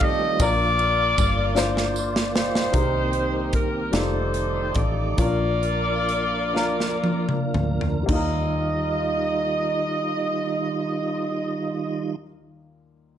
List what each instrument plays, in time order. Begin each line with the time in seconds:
Already playing: tonewheel organ D#3 G3 A3 C4 F4, upright piano G3 D4 D#4 F4 A4, saxophone section G4 A4
0.00 saxophone section D#5, kick, ride
0.39 fingered electric bass A#1, upright piano A#2 D4 F4 A#4, tonewheel organ A#3 F4 D5, saxophone section F4 A#4 D5, kick, ride, tambourine
0.79 ride
1.18 fingered electric bass G1, kick, ride, tambourine
1.55 upright piano D4 F4 C5, snare, tambourine
1.77 snare
1.96 tambourine
2.16 snare
2.36 saxophone section D#4 G4 C5, snare
2.55 snare
2.72 fingered electric bass C2, upright piano C3 G3 A#3 C4 D#4 G#4, tonewheel organ D#3 A#3 C4 G4, kick, closed hi-hat
2.82 upright piano A#4
3.13 closed hi-hat
3.53 saxophone section A#4, kick, closed hi-hat
3.92 fingered electric bass F1, tonewheel organ D#3 A3 G4 D5, upright piano G3 D#4 F4 A4 D5, saxophone section D#4 A4 C5, snare, closed hi-hat
4.34 closed hi-hat
4.74 fingered electric bass A1, saxophone section D5, kick, closed hi-hat
5.17 fingered electric bass A#1, upright piano A#2 C#4 F4 A#4, tonewheel organ F3 A#3 D4 A#4, saxophone section F4 A#4 D5, kick, closed hi-hat
5.24 upright piano D4
5.63 closed hi-hat
6.09 closed hi-hat
6.53 upright piano D4 F4 A#4, snare
6.80 snare
7.04 high tom
7.29 mid tom
7.54 fingered electric bass D2, mid tom
7.81 floor tom
8.03 upright piano G3 A#3
8.08 fingered electric bass D#2, upright piano D#2 D#4 F4, tonewheel organ D#3 G3 D#4 F4, saxophone section D#5, kick, splash
8.15 upright piano A#4